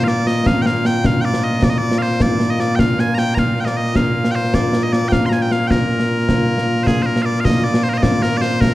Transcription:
Already playing: A#2 A#3 F4
0.04 D5 F5, snare
0.27 D#5, snare
0.46 F5, concert bass drum, snare
0.62 G5, snare
0.66 F5
0.75 snare
0.85 G5, snare
1.04 F5, concert bass drum, snare
1.21 D5 G5, snare
1.34 snare
1.44 D#5
1.53 snare
1.62 D5, concert bass drum, snare
1.70 D#5
1.78 D5
1.92 snare
1.98 C5 F5
2.11 snare
2.20 D5, concert bass drum, snare
2.40 snare
2.50 D#5
2.60 D5, snare
2.75 G5, concert bass drum, snare
2.80 F5
2.99 G#5, snare
3.08 snare
3.14 A#5, snare
3.18 G5
3.35 A#5, concert bass drum, snare
3.39 F5
3.57 G5, snare
3.65 D5 D#5, snare
3.77 D#5
3.86 snare
3.96 F5, concert bass drum, snare
4.25 snare
4.31 G5
4.35 C5
4.44 snare
4.54 D5, concert bass drum, snare
4.73 snare
4.83 D#5
4.93 D5, snare
5.08 G5, concert bass drum, snare
5.12 F5
5.26 A#5 C6
5.31 G#5, snare
5.39 G5 G#5, snare
5.51 F5, snare
5.61 snare
5.67 A#4 G5, concert bass drum, snare
5.90 snare
6.00 snare
6.19 snare
6.29 concert bass drum, snare
6.58 snare
6.77 snare
6.83 G#4 C5, concert bass drum, snare
7.02 A#4 C5
7.16 snare
7.22 D5 F5
7.36 snare
7.40 F5
7.45 D#5, concert bass drum, snare
7.64 D5, snare
7.74 snare
7.83 C5
7.89 A#4
7.94 C5, snare
7.98 D#5
8.03 D5, concert bass drum, snare
8.22 A#4, snare
8.37 D5
8.41 C5, snare
8.61 A#4, concert bass drum, snare

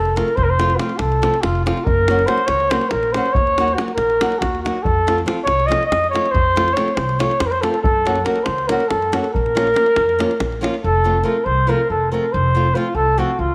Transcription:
Already playing: F1 A4
0.05 davul high
0.16 F3 A3 C4 F4 A#4, davul high
0.28 davul high
0.36 F1 C5, davul low
0.43 A#4
0.50 C5
0.59 F3 A3 C4 F4, davul high
0.70 davul high
0.77 F3 A3 F4, davul high
0.81 C4 F4
0.89 davul high
0.98 C2 A4, davul high
1.12 davul high
1.22 F3 A3 C4 F4, davul high
1.34 davul high
1.42 F1 F4, davul high
1.55 davul high
1.65 F3 A3 C4 F4, davul high
1.77 davul high
1.85 F#1 A#4, davul low
2.08 F#3 A#3 C#4 F#4, davul high
2.19 davul high
2.26 F#3 A#3 C#4 F#4 C5, davul high
2.38 davul high
2.47 C#2 C#5, davul high
2.60 davul high
2.70 F#3 A#3 C#4 F#4 C5, davul high
2.81 davul high
2.90 A#1 A#4, davul high
3.03 davul high
3.12 F#3 A#3 C#4 C5, davul high
3.17 F#4
3.25 davul high
3.33 D#2 C#5, davul low
3.47 davul high
3.58 F#3 A#3 D#4 F#4, davul high
3.68 davul high
3.74 F#4, davul high
3.79 F#3 A#3 D#4 F#4
3.88 davul high
3.94 A#1 A#4, davul high
4.10 davul high
4.21 F#3 A#3 D#4 F#4, davul high
4.32 davul high
4.39 D#2 F#4, davul high, davul low
4.55 davul high
4.62 F#3 A#3 F#4
4.66 D#4 F#4, davul high
4.83 F2 A4, davul low
5.07 F3 A3 C4 F4, davul high
5.18 davul high
5.26 F3 A3 C4 F4, davul high
5.44 C2 C#5, davul high
5.60 davul high
5.66 F3 A3 C4 D#5
5.71 F4, davul high
5.83 D#5, davul high
5.91 F2, davul high
6.04 davul high
6.10 F3 A3 C4 C#5
6.15 F4, davul high
6.26 davul high
6.31 F2 C5
6.36 davul low
6.56 F3 A3 C4 F4, davul high
6.68 davul high
6.73 F3 C#5, davul high
6.78 A3 C4 F4
6.88 davul high
6.95 C2 C5, davul high
7.09 davul high
7.19 F3 A3 C4 F4 C#5, davul high
7.31 davul high
7.40 F2 C5, davul high
7.46 A#4
7.51 C5, davul high
7.61 F3 A3 C4 F4 A4, davul high
7.69 A4 A#4
7.74 davul high
7.82 F#2 A4, davul low
8.05 F#3 A#3 C#4 F#4, davul high
8.16 davul high
8.25 F#3 A#3 C#4 F#4 A#4, davul high
8.36 davul high
8.44 C#2 C5, davul high
8.58 davul high
8.68 F#3 A#3 C#4 F#4 A#4, davul high
8.80 davul high
8.88 F#2 A4, davul high
9.02 davul high
9.12 F#3 A#3 C#4 F#4, davul high
9.19 A4
9.24 davul high
9.33 A#1 A#4, davul low
9.46 davul high
9.55 F3 A#3 C#4 F4, davul high
9.67 davul high
9.74 F3 A#3 C#4 F4, davul high
9.86 davul high
9.96 F2, davul high
10.09 davul high
10.19 F3 A#3 C#4 F4, davul high
10.31 davul high
10.40 A#1, davul high, davul low
10.52 davul high
10.61 F3 A#3 C#4 F4, davul high
10.74 davul high
10.82 F1 A4
11.04 F3 A3 C4 F4
11.23 F3 A3 C4 F4 A#4
11.44 C2 C5
11.67 F3 A3 C4 F4 A#4
11.90 F1 A4
12.12 F3 A3 C4 F4 A#4
12.32 F1 C5
12.55 F3 A3 C4 F4
12.75 F3 A3 C4 F4
12.95 C2 A4
13.18 F3 A3 C4 F4 F#4
13.39 C#2 F4

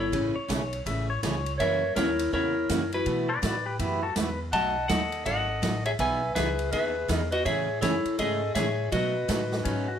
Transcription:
Already playing: G1 A4
0.00 E4 C#5
0.12 A1 C#3 E3 A3 C#4 G#4, kick, ride
0.36 C#5, muted upright bass stroke
0.48 B1 C#3 E3 A3 C#4 G#4, kick, snare, hi-hat pedal, ride
0.73 ride
0.86 A1 C#3 E3 A3 C#4 G#4 E5, kick, ride
1.10 C#5
1.23 C#2 C#3 E3 A3 C#4 G#4 C#5, kick, snare, hi-hat pedal, ride
1.46 ride
1.58 F#2 C#3 E3 A#3 C#4 F#4 A#4 C#5 E5, kick, ride
1.96 D#2 C#3 E3 A#3 C#4 E4 F#4 A#4 C#5, kick, snare, hi-hat pedal, ride
2.19 ride
2.32 E2 C#3 E3 A#3 C#4 E4 F#4 A#4 C#5, kick
2.69 F#2 C#3 E3 A#3 C#4 F#4, kick, snare, hi-hat pedal, ride
2.92 E4 F#4 B4, ride
3.06 B2 E3 A3 E4 F#4, kick, ride
3.29 B4 D5
3.42 A2 B2 E3 A3 E4 F#4 B4 D5, kick, snare, hi-hat pedal, ride
3.66 G4 B4
3.79 F#2 B2 E3 A3 E4 F#4 G4 B4, kick, ride
4.03 F#4 A4
4.16 E2 B2 E3 A3 E4 F#4 B4, kick, snare, hi-hat pedal, ride
4.53 B1 B2 F#3 A3 D#4 F#4 D#5 F#5 A5, kick, ride
4.88 D#2 B2 F#3 A3 D#4 F#4 A4 D#5 F#5, kick, snare, hi-hat pedal, ride
5.12 ride
5.25 G#1 B2 F#3 A3 D#4 F#4 A4 D#5 F#5, kick, ride
5.62 A1 B2 F#3 A3 D#4 F#4, kick, snare, hi-hat pedal, ride
5.85 G#4 C#5 E5, ride
5.99 B1 B2 E3 B3 D#4 G#4 B4 E5 G#5, kick, ride
6.35 C#2 B2 E3 B3 D#4 G#4 B4 E5, kick, snare, hi-hat pedal, ride
6.59 ride
6.71 D#2 B2 E3 B3 D#4 G#4 B4 E5, kick, ride
7.08 E2 B2 E3 B3 D#4 G#4, kick, snare, hi-hat pedal, ride
7.12 A#4 D#5
7.31 F#4 B4 D#5, ride
7.45 A2 C#3 E3 A3 C#4 G#4 C#5 E5, kick, ride
7.81 F#2 C#3 E3 A3 C#4 E4 G#4 A4 C#5, kick, snare, hi-hat pedal, ride
8.05 muted upright bass stroke, ride
8.18 G#2 C#3 E3 A3 C#4 G#4 A4 D#5, kick, ride
8.55 A2 C#3 E3 A3 C#4 G#4 C#5 E5, kick, snare, hi-hat pedal, ride
8.92 B2 F#3 A3 D#4 F#4 B4 D#5, kick, ride
9.28 A2 B2 F#3 A3 D#4 F#4, kick, snare, hi-hat pedal, ride
9.52 snare
9.65 G#2 B2 F#3 A3 C#4 D#4 F#4, kick, ride
9.88 F#4

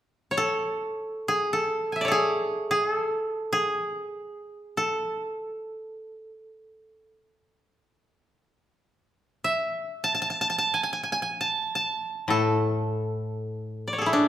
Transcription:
0.31 C#5
0.37 A4
1.28 G#4
1.53 A4
1.92 E5 G#5
2.01 C#5 D5
2.08 G#4 A4
2.71 G#4
2.90 A4
3.53 G#4
4.77 A4
9.44 E5
10.04 A5
10.15 A5
10.22 A5
10.30 A5
10.41 A5
10.50 A5
10.58 A5
10.74 G#5
10.83 G#5
10.93 G#5
11.03 G#5
11.12 G#5
11.22 G#5
11.41 A5
11.75 A5
12.28 A2 A4
13.88 D5
13.93 C#5
13.98 G#4 A4
14.06 E4
14.13 D4

